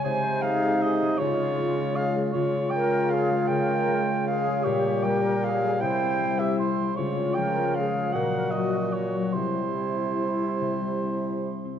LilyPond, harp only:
\new Staff \with { instrumentName = "Harp" } { \time 3/4 \key des \lydian \tempo 4 = 152 <c aes>8 c'8 aes8 ees'8 ees''8 aes8 | des8 des'8 aes8 f'8 des''8 aes8 | \key c \phrygian des8 des'8 aes8 f'8 des''8 aes8 | des8 des'8 aes8 f'8 des''8 aes8 |
bes,8 bes8 g8 g'8 des''8 g8 | c8 c'8 g8 e'8 c''8 g8 | des8 des'8 f8 f'8 aes'8 f8 | bes,8 bes8 ges8 des'8 ges'8 ges8 |
c8 g8 c'8 e'8 g'8 c'8 | c8 g8 c'8 e'8 g'8 c'8 | }